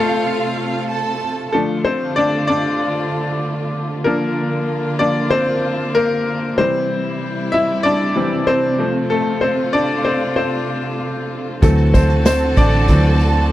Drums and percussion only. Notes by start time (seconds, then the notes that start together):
11.62 kick, closed hi-hat, tambourine
11.78 closed hi-hat
11.94 kick, closed hi-hat, tambourine
12.10 closed hi-hat
12.25 snare, closed hi-hat, tambourine
12.56 kick, closed hi-hat, tambourine
12.73 snare
12.88 kick, closed hi-hat
13.19 closed hi-hat